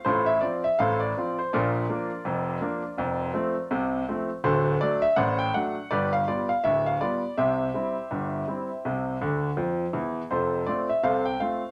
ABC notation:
X:1
M:2/4
L:1/16
Q:"Swing 16ths" 1/4=82
K:F
V:1 name="Grand piano"
[FAc] e d e [Acf] d2 c | [FBd]8- | [FBd]6 z2 | [^FAc]2 d e [cd^f] g f2 |
[G=Bd] f d f e f d2 | [Gce]8- | [Gce]4 z4 | [FAc]2 d e [Acf] g f2 |]
V:2 name="Grand piano" clef=bass
[A,,,A,,]2 [F,CF]2 [A,,,A,,]2 [F,CF]2 | [B,,,B,,]2 [F,B,D]2 [F,,,F,,]2 [F,B,D]2 | [F,,,F,,]2 [F,A,C]2 [C,,C,]2 [F,A,C]2 | [D,,,D,,]2 [^F,A,D]2 [A,,,A,,]2 [F,A,D]2 |
[G,,,G,,]2 [G,=B,F]2 [D,,,D,,]2 [G,B,F]2 | [C,,C,]2 [G,CE]2 [G,,,G,,]2 [G,CE]2 | [C,,C,]2 [D,,D,]2 [F,,F,]2 [E,,E,]2 | [F,,,F,,]2 [A,CF]2 [C,,C,]2 [A,CF]2 |]